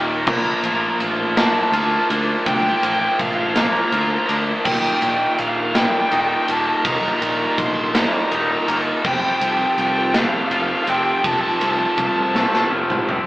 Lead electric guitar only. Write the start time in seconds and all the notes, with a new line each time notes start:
0.29 A#5
0.37 A#5
0.43 A#5
0.51 A#5
0.59 A#5
0.67 A#5
0.73 A#5
0.82 A#5
0.90 A#5
1.38 A5
1.45 A5
1.53 A5
1.62 A5
1.68 A5
1.76 A5
1.84 A5
1.91 A5
2.00 A5
2.47 G5
2.54 G5
2.61 G5
2.69 G5
2.76 G5
2.84 G5
2.93 G5
3.00 G5
3.08 G5
3.21 F5
3.28 F5
3.35 F5
3.42 F5
3.50 F5
3.57 A#5
3.64 A#5
3.72 A#5
3.80 A#5
3.88 A#5
3.96 A#5
4.03 A#5
4.11 A#5
4.19 A#5
4.26 A#5
4.65 G5
4.72 G5
4.80 G5
4.88 G5
4.95 G5
5.03 G5
5.10 G5
5.18 G5
5.25 G5
5.34 G5
5.39 F5
5.48 F5
5.57 F5
5.65 F5
5.77 G5
5.84 G5
5.91 G5
5.99 G5
6.07 G5
6.15 G5
6.21 G5
6.29 G5
6.36 G5
6.43 G5
6.51 A5
6.59 A5
6.67 A5
6.76 A5
6.86 A#5
6.92 A#5
7.00 A#5
7.09 A#5
7.16 A#5
7.22 A#5
7.30 A#5
7.37 A#5
7.45 A#5
7.52 A#5
7.59 C6
7.67 C6
7.75 C6
7.84 C6
7.97 A#5
8.05 A#5
8.12 A#5
8.20 A#5
8.28 A#5
8.35 A#5
8.44 A#5
8.52 A#5
8.58 A#5
8.67 A#5
9.06 G5
9.14 G5
9.21 G5
9.29 G5
9.36 G5
9.44 G5
9.51 G5
9.58 G5
9.66 G5
9.73 G5
9.81 G5
9.88 G5
9.96 G5
10.03 G5
10.12 G5
10.17 F5
10.25 F5
10.32 F5
10.39 F5
10.47 F5
10.55 F5
10.62 F5
10.69 F5
10.76 F5
10.84 F5
10.89 G5
10.97 G5
11.04 G5
11.12 G5
11.18 G5
11.25 A5
11.32 A5
11.41 A5
11.48 A5
11.56 A5
11.63 A5
11.70 A5
11.79 A5
11.85 A5
11.92 A5
12.01 A5
12.07 A5
12.17 A5
12.23 A5
12.31 A5
12.38 A5
12.46 A5
12.53 A5
12.60 A5